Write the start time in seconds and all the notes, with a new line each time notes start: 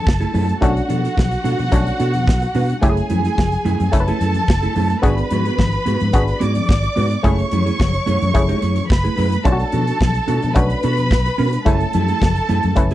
Already playing: A3 C#4 E4 A4 A5
0.05 F#1, muted clean electric guitar stroke, kick, snare, muted conga
0.20 A3 E4 G#4, closed hi-hat
0.33 F#2 A3 E4 G#4, open hi-hat, muted conga, low conga
0.48 muted clean electric guitar stroke, closed hi-hat
0.61 B1 A3 C#4 D4 F#4 A4 F#5, kick, closed hi-hat, muted conga, low conga
0.76 muted clean electric guitar stroke, closed hi-hat
0.89 B2 D4 F#4 A4, closed hi-hat, muted conga, high conga
1.03 D4 F#4 A4, closed hi-hat
1.17 B1, muted clean electric guitar stroke, kick, snare, high conga
1.31 muted clean electric guitar stroke, closed hi-hat
1.44 B2 D4 F#4 A4, closed hi-hat, muted conga, low conga
1.59 B2, muted clean electric guitar stroke, closed hi-hat, high conga
1.71 B1 A3 C#4 D4 F#4, kick, closed hi-hat, muted conga, high conga
1.86 muted clean electric guitar stroke, closed hi-hat
1.99 B2 D4 F#4 A4, closed hi-hat
2.14 muted clean electric guitar stroke, closed hi-hat, high conga
2.27 B1, muted clean electric guitar stroke, kick, snare, muted conga
2.42 muted clean electric guitar stroke, closed hi-hat
2.55 B2 D4 F#4 B4, open hi-hat, muted conga, low conga
2.69 muted clean electric guitar stroke, closed hi-hat
2.82 F#1 A3 C#4 E4 G4 G#4 G#5, kick, closed hi-hat, muted conga, low conga
2.89 G#4
2.97 muted clean electric guitar stroke, closed hi-hat
3.09 F#2 A3 E4 G#4, closed hi-hat, muted conga, high conga
3.24 A3 E4 G#4, closed hi-hat
3.38 F#1, muted clean electric guitar stroke, kick, snare, muted conga, high conga
3.52 muted clean electric guitar stroke, closed hi-hat
3.65 F#2 A3 E4 G#4, closed hi-hat, muted conga, low conga
3.80 F#2, muted clean electric guitar stroke, closed hi-hat, high conga
3.92 F#1 A3 C#4 E4 A4 A5, muted clean electric guitar stroke, kick, closed hi-hat, high conga
4.00 B4
4.08 A3 E4 G#4, closed hi-hat
4.21 F#2 A3 E4 G#4, closed hi-hat, muted conga
4.34 muted clean electric guitar stroke, closed hi-hat, high conga
4.48 F#1, muted clean electric guitar stroke, kick, snare, muted conga
4.62 A3 E4 G#4, closed hi-hat
4.75 F#2 A3 E4 G#4, open hi-hat, muted conga, low conga
4.90 muted clean electric guitar stroke, closed hi-hat
5.02 G#1 B3 D4 F#4 G#4 B4 B5, kick, closed hi-hat, low conga
5.18 muted clean electric guitar stroke, closed hi-hat
5.30 G#2 B3 F#4 G#4, closed hi-hat, muted conga, high conga
5.46 B3 F#4 G#4, closed hi-hat
5.58 G#1, muted clean electric guitar stroke, kick, snare, muted conga, high conga
5.72 muted clean electric guitar stroke, closed hi-hat
5.86 G#2 B3 F#4 G#4, closed hi-hat, low conga
6.00 G#2, muted clean electric guitar stroke, closed hi-hat, high conga
6.13 G#1 B3 D4 F#4 G#4, kick, closed hi-hat, muted conga, high conga
6.28 muted clean electric guitar stroke, closed hi-hat
6.40 G#2 B3 F#4 G#4 D5 D6, closed hi-hat, muted conga
6.55 muted clean electric guitar stroke, closed hi-hat, high conga
6.69 G#1, muted clean electric guitar stroke, kick, snare
6.83 muted clean electric guitar stroke, closed hi-hat
6.96 G#2 B3 F#4 B4, open hi-hat, muted conga, low conga
7.11 muted clean electric guitar stroke, closed hi-hat
7.23 F#1 A3 C#4 E4 G#4 C#5 C#6, kick, closed hi-hat, low conga
7.39 muted clean electric guitar stroke, closed hi-hat
7.52 F#2 A3 E4 G#4, closed hi-hat, muted conga, high conga
7.66 A3 E4 G#4, closed hi-hat
7.79 F#1, muted clean electric guitar stroke, kick, snare, muted conga, high conga
7.93 muted clean electric guitar stroke, closed hi-hat
8.06 F#2 A3 E4 G#4, closed hi-hat, low conga
8.21 F#2, muted clean electric guitar stroke, closed hi-hat, high conga
8.34 F#1 A3 C#4 E4 G#4, muted clean electric guitar stroke, kick, closed hi-hat, muted conga, high conga
8.49 A3 E4 G#4, closed hi-hat
8.61 F#2 A3 E4 G#4, closed hi-hat, muted conga
8.76 muted clean electric guitar stroke, closed hi-hat, high conga
8.89 F#1 B4 B5, muted clean electric guitar stroke, kick, snare
9.04 A3 E4 G#4, closed hi-hat
9.17 F#2 A3 E4 G#4, open hi-hat, low conga
9.32 muted clean electric guitar stroke, closed hi-hat
9.44 B1 A3 C#4 D4 F4 F#4 A4 A5, kick, closed hi-hat, muted conga, low conga
9.52 F#4
9.60 muted clean electric guitar stroke, closed hi-hat
9.72 B2 D4 F#4 A4, closed hi-hat, muted conga, high conga
9.87 D4 F#4 A4, closed hi-hat
10.00 B1, muted clean electric guitar stroke, kick, snare, muted conga, high conga
10.14 muted clean electric guitar stroke, closed hi-hat
10.28 B2 D4 F#4 A4, closed hi-hat, muted conga, low conga
10.43 B2, muted clean electric guitar stroke, closed hi-hat, high conga
10.54 B1 A3 C#4 D4 F#4 B4 B5, kick, closed hi-hat, high conga
10.70 muted clean electric guitar stroke, closed hi-hat
10.83 B2 D4 F#4 A4, closed hi-hat
10.97 muted clean electric guitar stroke, closed hi-hat, high conga
11.11 B1, muted clean electric guitar stroke, kick, snare
11.26 muted clean electric guitar stroke, closed hi-hat
11.38 B2 D4 F#4 B4, open hi-hat, muted conga, low conga
11.53 muted clean electric guitar stroke, closed hi-hat
11.65 F#1 A3 C#4 E4 G#4 A4 A5, kick, closed hi-hat, muted conga, low conga
11.81 muted clean electric guitar stroke, closed hi-hat
11.93 F#2 A3 E4 G#4, closed hi-hat, muted conga, high conga
12.08 A3 E4 G#4, closed hi-hat
12.21 F#1, muted clean electric guitar stroke, kick, snare, muted conga, high conga
12.35 muted clean electric guitar stroke, closed hi-hat
12.49 F#2 A3 E4 G#4, closed hi-hat, low conga
12.63 F#2, muted clean electric guitar stroke, closed hi-hat, high conga
12.75 F#1 A3 C#4 E4 B4, muted clean electric guitar stroke, kick, closed hi-hat, muted conga, high conga
12.91 closed hi-hat